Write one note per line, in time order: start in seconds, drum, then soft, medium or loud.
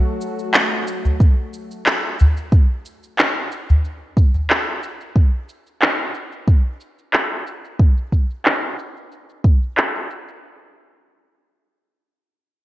0.21 cabasa medium
0.39 cabasa soft
0.54 clap medium
0.54 cabasa soft
0.87 cabasa medium
1.05 udu medium
1.05 cabasa soft
1.20 kick medium
1.20 cabasa soft
1.53 cabasa medium
1.71 cabasa soft
1.86 clap medium
1.86 cabasa soft
2.19 udu medium
2.19 cabasa medium
2.37 cabasa soft
2.52 kick loud
2.52 cabasa soft
2.85 cabasa medium
3.03 cabasa soft
3.19 clap medium
3.19 cabasa soft
3.52 cabasa medium
3.69 udu medium
3.69 cabasa soft
3.85 cabasa soft
4.17 kick medium
4.17 cabasa medium
4.34 udu medium
4.34 cabasa soft
4.50 clap medium
4.50 cabasa soft
4.83 cabasa medium
5.01 cabasa soft
5.16 kick medium
5.16 cabasa soft
5.49 cabasa medium
5.67 cabasa soft
5.82 clap medium
5.82 cabasa soft
6.14 cabasa medium
6.32 cabasa soft
6.48 kick medium
6.48 cabasa soft
6.80 cabasa medium
6.98 cabasa soft
7.13 clap medium
7.13 cabasa soft
7.47 cabasa medium
7.65 cabasa soft
7.79 kick loud
7.79 cabasa soft
7.97 cabasa soft
8.12 kick medium
8.12 cabasa medium
8.30 cabasa soft
8.45 clap medium
8.45 cabasa soft
8.79 cabasa medium
8.97 cabasa soft
9.12 cabasa soft
9.29 cabasa soft
9.44 kick medium
9.44 cabasa medium
9.63 cabasa soft
9.77 clap medium
9.77 cabasa soft
9.95 cabasa soft
10.10 cabasa medium
10.28 cabasa soft